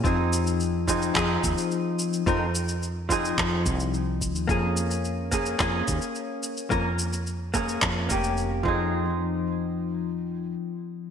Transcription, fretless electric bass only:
X:1
M:4/4
L:1/16
Q:1/4=108
K:Fm
V:1 name="Fretless electric bass" clef=bass
F,,8 F,,2 E,, z4 z | F,,8 F,,2 C,,4- C,, E,, | F,,8 F,,2 E,, z4 z | F,,8 F,,2 F,,,4 F,,2- |
F,,12 z4 |]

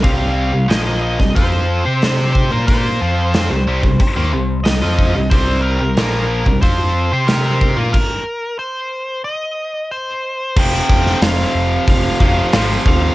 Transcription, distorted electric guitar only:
X:1
M:4/4
L:1/16
Q:1/4=91
K:Cm
V:1 name="Distorted electric guitar" clef=bass
[C,G,C]3 [C,G,] [B,,F,B,]3 [C,G,] [F,CF]3 [CGc]4 [B,FB]- | [B,FB]2 [F,CF]3 [C,G,] [C,G,] [C,G,] z [E,B,] [C,G,]2 [C,G,] [F,CF]2 [C,G,] | [C,G,C]3 [C,G,] [B,,F,B,]3 [C,G,] [F,CF]3 [CGc]4 [B,F] | z16 |
[F,,C,F,]8- [F,,C,F,]2 [F,,C,F,]2 [F,,C,F,]4 |]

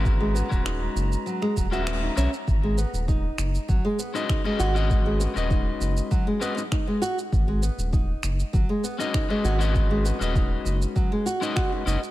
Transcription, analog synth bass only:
X:1
M:4/4
L:1/16
Q:1/4=99
K:G#m
V:1 name="Analog synth bass" clef=bass
G,,,2 z D,,,2 z F,,, z3 D,,,3 z B,,, z | G,,,2 z D,,,2 z F,,, z G,,, z4 z G,,,2- | G,,,2 z D,,,2 z F,,, z8 z | G,,,2 z D,,,2 z F,,, z G,,, z4 z G,,,2- |
G,,,2 z D,,,2 z F,,, z6 z F,,, z |]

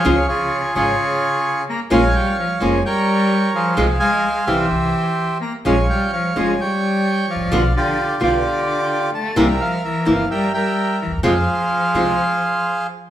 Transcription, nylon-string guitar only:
X:1
M:4/4
L:1/8
Q:1/4=129
K:Fm
V:1 name="Nylon-string guitar" clef=bass
[D,F,A,DF] z2 [D,F,A,DF] z4 | [F,B,DF] z2 [F,B,DF] z4 | [C,F,A,CF] z2 [C,=E,G,C=E] z4 | [F,A,DF] z2 [F,A,DF] z4 |
[=B,,=D,G,=B,F] z2 [B,,D,G,B,F] z4 | [C,=E,B,C=E] z2 [C,E,B,CE] z4 | [C,F,A,CF] z2 [C,F,A,CF] z4 |]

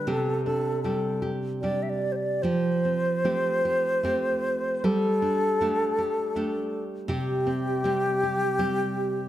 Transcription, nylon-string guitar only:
X:1
M:3/4
L:1/8
Q:1/4=78
K:Cmix
V:1 name="Nylon-string guitar"
[C,G] D [G,DG] G [G,DG]2 | [F,G] C [A,CG] G [A,CG]2 | [G,G] D [A,DG] G [A,DG]2 | [C,G] C [G,CG] G [G,CG]2 |]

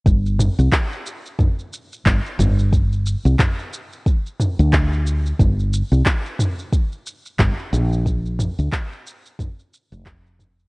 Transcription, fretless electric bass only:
X:1
M:4/4
L:1/16
Q:"Swing 16ths" 1/4=90
K:Gm
V:1 name="Fretless electric bass" clef=bass
G,,,2 z C,, z8 G,,, z G,,,2- | G,,,2 z C,, z6 z D,,4 z | G,,,2 z C,, z8 G,,, z B,,,2- | B,,,2 z D,, z6 z F,,,4 z |]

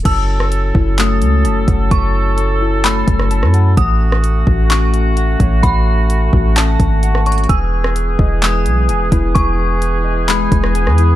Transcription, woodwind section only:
X:1
M:4/4
L:1/8
Q:1/4=129
K:F#dor
V:1 name="Woodwind section"
[F,CEA]8- | [F,CEA]8 | [A,F]8- | [A,F]8 |
[E,B,G]8- | [E,B,G]8 |]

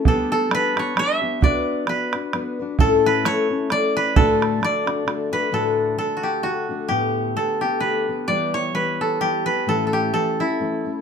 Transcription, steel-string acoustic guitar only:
X:1
M:3/4
L:1/8
Q:"Swing" 1/4=131
K:D
V:1 name="Steel-string acoustic guitar"
[G,B,DG]2 [G,B,DG] [B,DG] [G,B,DG] [B,DG] | [B,DFB]2 [B,DFB] [DFB] [B,DFB] [DFB] | [A,,A,CEA]2 [A,CEA] [CEA] [A,CEA]2 | [D,,A,,D,A,DF]2 [D,A,DF] [D,A,DF] [D,A,DF] [D,A,DF] |
[D,,A,,D,A,DF]2 [D,A,DF]2 [D,A,DF] [D,A,DF] | [D,,A,,D,A,B,G]2 [D,A,B,G] [D,A,B,G] [D,A,B,G] [D,A,B,G] | [E,G,B,G]2 [E,G,B,G]2 [E,G,B,G] [G,B,G] | [A,,E,A,CE]2 [E,A,CE] [A,CE] [E,A,CE] [A,CE] |]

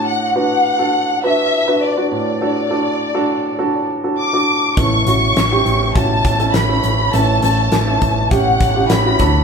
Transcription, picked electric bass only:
X:1
M:4/4
L:1/8
Q:1/4=102
K:Amix
V:1 name="Picked electric bass" clef=bass
z8 | z8 | A,,, A,,, A,,, A,,, A,,, A,,, A,,, A,,, | A,,, A,,, A,,, A,,, A,,, A,,, A,,, D,, |]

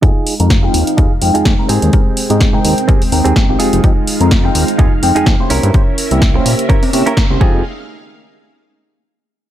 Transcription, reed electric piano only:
X:1
M:4/4
L:1/16
Q:"Swing 16ths" 1/4=126
K:Fm
V:1 name="Reed electric piano"
[A,CEFG] z2 [A,CEFB]2 [A,CEFg]3 [A,CEFG] z [A,CEFg]3 [A,CEGB]3 | [A,CEGB] z2 [A,CEGe]2 [A,CEBg]3 [A,CEGB] z [A,CEBg]3 [A,CEFG]3 | [A,CEFG] z2 [A,CEFB]2 [A,CEFg]3 [A,CEFG] z [A,CEFg]3 [B,D=EGc]3 | [B,D=EGc] z2 [B,DEG=e]2 [B,DEGc]3 [B,DEGc] z [B,DEGd] [B,DEGd] z [B,DEGc] [A,C_EFG]2 |
z16 |]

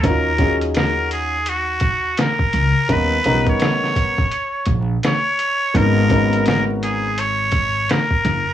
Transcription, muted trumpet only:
X:1
M:4/4
L:1/16
Q:"Swing 16ths" 1/4=84
K:Ebm
V:1 name="Muted trumpet"
B4 B2 A2 G4 B4 | c3 d6- d z2 d4 | B4 B2 A2 d4 B4 |]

